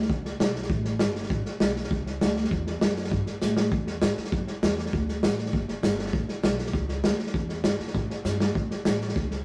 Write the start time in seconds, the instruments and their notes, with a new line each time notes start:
0.02 snare
0.10 upright bass C#2, kick, snare
0.25 snare
0.39 upright bass B1, snare, hi-hat pedal
0.55 snare
0.62 snare
0.70 upright bass A1, kick, snare
0.85 snare
0.99 upright bass G1, snare, hi-hat pedal
1.15 snare
1.23 snare
1.30 upright bass A1, kick, snare
1.45 muted upright bass stroke, snare
1.60 upright bass B1, snare, hi-hat pedal
1.76 snare
1.84 snare
1.91 upright bass C#2, kick, snare
2.06 snare
2.21 upright bass D2, snare, hi-hat pedal
2.37 snare
2.44 snare
2.51 upright bass E2, kick, snare
2.67 snare
2.81 upright bass F#2, snare, hi-hat pedal
2.96 snare
3.04 snare
3.11 upright bass G2, kick, snare
3.26 snare
3.42 upright bass A2, snare, hi-hat pedal
3.57 snare
3.71 upright bass E2, kick, snare
3.87 snare
4.02 upright bass G#2, snare, hi-hat pedal
4.17 muted upright bass stroke, snare
4.25 snare
4.32 upright bass F#2, kick, snare
4.47 muted upright bass stroke, snare
4.63 upright bass E2, snare, hi-hat pedal
4.78 snare
4.86 snare
4.93 upright bass D2, kick, snare
5.09 snare
5.23 upright bass A1, snare, hi-hat pedal
5.38 snare
5.46 snare
5.53 upright bass F#1, kick, snare
5.68 snare
5.83 upright bass G1, snare, hi-hat pedal
5.99 snare
6.06 snare
6.13 upright bass A1, kick, snare
6.28 muted upright bass stroke, snare
6.43 upright bass B1, snare, hi-hat pedal
6.59 snare
6.66 snare
6.73 upright bass C#2, kick, snare
6.89 snare
7.03 upright bass D2, snare, hi-hat pedal
7.19 muted upright bass stroke, snare
7.27 snare
7.34 upright bass E2, kick, snare
7.49 snare
7.64 upright bass G2, snare, hi-hat pedal
7.79 muted upright bass stroke, snare
7.87 snare
7.94 upright bass A2, kick, snare
8.10 muted upright bass stroke, snare
8.25 upright bass G2, snare, hi-hat pedal
8.40 snare
8.55 upright bass A2, kick, snare
8.71 muted upright bass stroke, snare
8.85 upright bass A1, snare, hi-hat pedal
9.01 snare
9.09 snare
9.16 upright bass C#2, kick, snare
9.31 snare